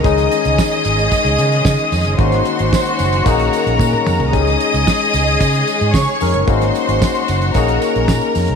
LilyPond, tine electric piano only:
\new Staff \with { instrumentName = "Tine electric piano" } { \time 4/4 \key aes \mixolydian \tempo 4 = 112 <aes des' ees' aes'>1 | <bes des' ees' ges'>2 <bes des' ees' aes'>2 | <aes des' ees' g' aes'>2.~ <aes des' ees' g' aes'>8 <aes des' ees' bes'>8 | <bes des' ees' ges'>2 <bes des' ees' aes'>2 | }